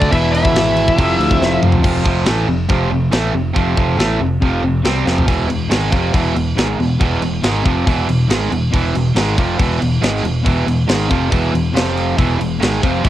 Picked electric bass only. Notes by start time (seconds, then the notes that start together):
0.12 E1
0.53 G#1
0.98 F1
1.19 D2
1.40 F1
1.62 F1
1.84 F1
2.06 F1
2.27 A1
2.47 F1
2.69 F1
2.90 F1
3.12 A1
3.33 F1
3.56 F1
3.78 F1
3.97 A1
4.20 F1
4.42 F1
4.63 F1
4.85 C2
5.05 F1
5.28 E1
5.48 E1
5.70 G#1
5.92 F1
6.14 E1
6.35 E1
6.57 G#1
6.79 E1
7.01 E1
7.21 E1
7.43 G#1
7.65 F1
7.87 E1
8.08 E1
8.29 G#1
8.51 E1
8.74 E1
8.95 E1
9.15 G#1
9.38 F1
9.59 E1
9.82 E1
10.02 G#1
10.23 E1
10.46 E1
10.66 E1
10.88 G#1
11.11 F1
11.32 E1
11.53 E1
11.73 F1
12.18 E1
12.40 E1
12.61 G#1
12.83 F1
13.05 E1